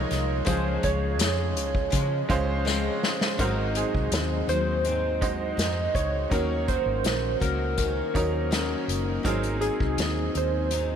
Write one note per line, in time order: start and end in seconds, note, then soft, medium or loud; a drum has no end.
0.00 0.44 A#2 medium
0.00 0.46 F3 medium
0.00 0.45 G#3 medium
0.00 0.47 G#3 medium
0.00 0.47 D#4 medium
0.00 0.49 D#4 medium
0.00 0.47 F4 medium
0.00 0.48 A#4 loud
0.00 0.44 C#5 medium
0.11 0.40 C2 medium
0.11 snare soft
0.11 closed hi-hat medium
0.45 0.76 C#2 medium
0.45 1.89 C#3 medium
0.45 1.91 F3 medium
0.45 1.38 G#3 medium
0.45 1.92 G#3 medium
0.45 1.39 C#4 medium
0.45 1.39 F4 medium
0.45 1.40 G#4 medium
0.45 0.84 C5 loud
0.45 kick loud
0.45 closed hi-hat medium
0.83 1.21 C#2 medium
0.83 2.26 C#5 loud
0.83 kick medium
0.83 closed hi-hat medium
1.19 1.58 F2 medium
1.19 snare loud
1.19 closed hi-hat loud
1.19 tambourine medium
1.57 1.86 C#2 loud
1.57 closed hi-hat medium
1.75 kick medium
1.90 2.64 C#3 medium
1.90 2.22 C#3 loud
1.90 2.65 F3 medium
1.90 2.66 G#3 medium
1.90 kick medium
1.90 closed hi-hat medium
2.29 2.88 C#2 medium
2.29 2.98 G#3 medium
2.29 2.99 C#4 medium
2.29 2.99 F4 medium
2.29 2.99 C5 loud
2.29 kick loud
2.29 closed hi-hat medium
2.65 3.39 C#3 medium
2.65 3.39 F3 medium
2.65 3.39 G#3 medium
2.65 3.39 C4 medium
2.65 snare medium
2.65 tambourine medium
3.03 snare medium
3.21 snare loud
3.38 3.83 G#1 medium
3.38 4.48 G#2 medium
3.38 4.50 F#3 medium
3.38 4.31 G#3 medium
3.38 4.47 C4 medium
3.38 4.31 D#4 medium
3.38 4.47 D#4 medium
3.38 4.32 F#4 medium
3.38 3.77 A#4 medium
3.38 4.32 C5 medium
3.38 kick loud
3.38 closed hi-hat medium
3.75 4.45 G#4 medium
3.75 closed hi-hat medium
3.95 4.09 C2 medium
3.95 kick medium
4.12 4.41 D#2 medium
4.12 snare loud
4.12 closed hi-hat medium
4.47 5.54 D#2 loud
4.47 4.85 F#3 soft
4.47 4.85 C4 soft
4.47 4.84 D#4 soft
4.47 5.24 C5 medium
4.47 closed hi-hat medium
4.85 5.56 G#2 soft
4.85 5.60 F#3 medium
4.85 5.59 C4 medium
4.85 5.59 D#4 medium
4.85 closed hi-hat medium
5.21 5.91 G#3 medium
5.21 5.91 D#4 medium
5.21 5.92 F#4 medium
5.21 5.92 C5 medium
5.21 5.98 D#5 medium
5.21 kick loud
5.21 closed hi-hat medium
5.57 5.87 F2 medium
5.57 6.31 G#2 medium
5.57 6.31 D#4 medium
5.57 snare medium
5.57 closed hi-hat medium
5.95 6.24 C#2 medium
5.95 6.70 C#5 medium
5.95 kick medium
5.95 closed hi-hat medium
6.30 6.76 D#2 loud
6.30 7.44 D#3 medium
6.30 7.23 F#3 medium
6.30 7.42 A#3 medium
6.30 7.24 C#4 medium
6.30 7.40 C#4 medium
6.30 7.24 D#4 medium
6.30 7.40 F#4 medium
6.30 7.24 A#4 medium
6.30 kick loud
6.30 closed hi-hat medium
6.68 7.38 C5 medium
6.68 kick medium
6.68 closed hi-hat medium
6.86 7.01 G#1 medium
7.04 7.34 A#1 medium
7.04 snare loud
7.04 closed hi-hat medium
7.40 8.00 C#2 medium
7.40 7.77 A#3 soft
7.40 7.78 C#4 soft
7.40 7.77 F#4 medium
7.40 8.84 A#4 medium
7.40 kick medium
7.40 closed hi-hat medium
7.77 8.50 D#3 medium
7.77 8.50 A#3 medium
7.77 8.51 C#4 medium
7.77 8.52 F#4 medium
7.77 kick medium
7.77 closed hi-hat medium
8.14 8.74 D#2 medium
8.14 8.84 F#3 medium
8.14 8.84 C#4 medium
8.14 8.85 D#4 medium
8.14 8.85 A#4 medium
8.14 kick medium
8.14 closed hi-hat medium
8.51 9.24 D#3 medium
8.51 9.25 A#3 medium
8.51 9.25 C#4 medium
8.51 9.26 F#4 medium
8.51 snare loud
8.51 closed hi-hat medium
8.88 9.17 F#1 medium
8.88 closed hi-hat medium
9.23 9.69 G#1 loud
9.23 10.69 G#2 medium
9.23 10.17 F#3 medium
9.23 10.71 F#3 medium
9.23 10.17 C4 medium
9.23 10.71 C4 medium
9.23 10.17 D#4 medium
9.23 10.72 D#4 medium
9.23 10.18 G#4 medium
9.23 9.63 A#4 medium
9.23 kick loud
9.23 closed hi-hat medium
9.43 closed hi-hat soft
9.61 10.30 G#4 medium
9.61 closed hi-hat medium
9.80 9.95 C2 medium
9.80 kick medium
9.98 10.27 D#2 medium
9.98 snare loud
9.98 closed hi-hat medium
10.35 10.96 D#2 loud
10.35 10.96 C5 medium
10.35 closed hi-hat medium
10.70 10.96 G#2 medium
10.70 10.96 F#3 medium
10.70 10.96 C4 medium
10.70 10.96 D#4 medium
10.70 closed hi-hat medium